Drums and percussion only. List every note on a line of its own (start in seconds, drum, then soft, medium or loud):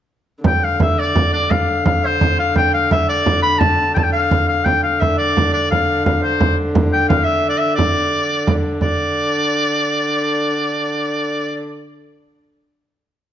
0.44 frame drum medium
0.80 frame drum medium
0.98 frame drum soft
1.16 frame drum medium
1.51 frame drum medium
1.85 frame drum medium
2.03 frame drum soft
2.21 frame drum medium
2.55 frame drum medium
2.91 frame drum medium
3.09 frame drum soft
3.26 frame drum medium
3.61 frame drum medium
3.96 frame drum medium
4.14 frame drum soft
4.31 frame drum medium
4.66 frame drum medium
5.02 frame drum medium
5.20 frame drum soft
5.37 frame drum medium
5.72 frame drum medium
6.06 frame drum medium
6.24 frame drum soft
6.41 frame drum medium
6.75 frame drum medium
7.10 frame drum medium
7.28 frame drum soft
7.79 frame drum medium
8.47 frame drum medium
8.64 frame drum soft
8.81 frame drum medium